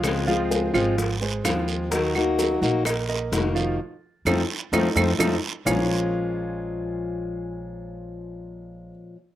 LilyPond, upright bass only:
\new Staff \with { instrumentName = "Upright bass" } { \clef bass \time 4/4 \key bes \minor \tempo 4 = 128 des,4. aes,,4. ees,4~ | ees,4. bes,,4. f,,4 | r4 f,8 r8 f,8 f,8 f,8 r8 | bes,,1~ |
bes,,1 | }